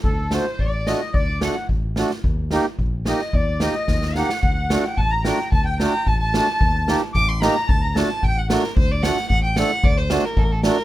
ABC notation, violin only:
X:1
M:2/4
L:1/16
Q:1/4=110
K:none
V:1 name="Violin"
A2 c2 d2 _e2 | d2 ^f2 z4 | z6 _e2 | d2 _e4 ^f2- |
^f f2 g a _b g2 | a g _b2 a a3- | a3 z d' c' _b2 | a _b a2 g ^f _B2 |
c d ^f2 f g f2 | d c2 _B A/2 B/2 A B2 |]